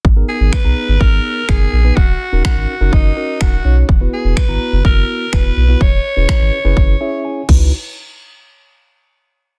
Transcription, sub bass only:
X:1
M:4/4
L:1/16
Q:1/4=125
K:G#m
V:1 name="Sub bass" clef=bass
G,,,2 z G,,, z B,,, z G,,, G,,,2 z2 F,,,2 A,,,2 | D,,,2 z D,,, z G,,, z F,,, F,,,2 z2 D,,,2 B,,,2 | E,,,2 z E,,, z G,,, z F,,, F,,,2 z2 E,,,2 B,,,2 | E,,,2 z E,,, z G,,, z F,,, F,,,2 z4 C,,2 |
z16 |]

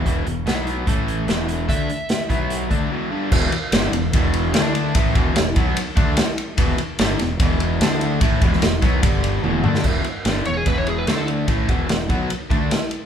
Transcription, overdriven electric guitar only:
X:1
M:4/4
L:1/8
Q:1/4=147
K:Bmix
V:1 name="Overdriven electric guitar" clef=bass
[E,,B,,E,] [E,,B,,] [B,,F,B,]2 [A,,E,A,]2 [E,,B,,E,]2 | [=D,A,=D] z2 [B,,F,B,]2 [D,A,D] [E,,B,,E,] [=G,,D,=G,] | [K:Dlyd] [E,,B,,E,] z [=G,,D,=G,] [E,,B,,] [E,,B,,E,]2 [D,A,D]2 | [A,,E,A,] [E,,B,,E,] [E,,B,,] [B,,F,B,] z [D,A,D] z2 |
[E,,B,,E,] z [=G,,D,=G,] [E,,B,,] [E,,B,,E,]2 [D,A,D]2 | [A,,E,A,] [E,,B,,E,] [E,,B,,] [B,,F,B,] [=G,,D,=G,]2 [E,,B,,E,] [D,A,D] | [E,,B,,E,] z [=G,,D,=G,] [E,,B,,] [E,,B,,E,]2 [D,A,D]2 | [A,,E,A,] [E,,B,,E,] [E,,B,,] [B,,F,B,] z [D,A,D] z2 |]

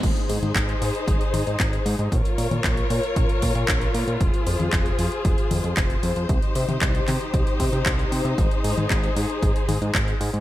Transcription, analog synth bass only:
X:1
M:4/4
L:1/16
Q:1/4=115
K:Ab
V:1 name="Analog synth bass" clef=bass
A,,, z A,, A,, A,,, z A,, z A,,, z A,, A,, A,,, z A,, A,, | B,,, z B,, B,, B,,, z B,, z B,,, z B,, B,, B,,, z B,, B,, | F,,, z F,, F,, F,,, z F,, z F,,, z F,, F,, F,,, z F,, F,, | C,, z C, C, C,, z C, z C,, z C, C, C,, z C, C, |
A,,, z A,, A,, A,,, z A,, z A,,, z A,, A,, A,,, z A,, A,, |]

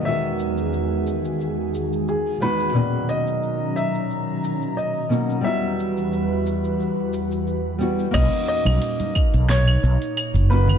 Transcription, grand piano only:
X:1
M:4/4
L:1/8
Q:"Swing 16ths" 1/4=89
K:B
V:1 name="Grand piano"
e6 G B- | B d2 e3 d2 | e6 z2 | d d2 z c3 B |]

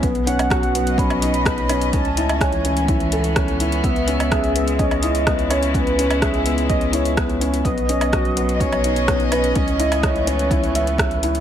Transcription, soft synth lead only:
X:1
M:4/4
L:1/8
Q:1/4=126
K:C#m
V:1 name="Soft synth lead"
z f3 b4 | a2 g4 z2 | e4 d3 c | B2 e2 d c2 z |
d4 c3 B | d3 c4 z |]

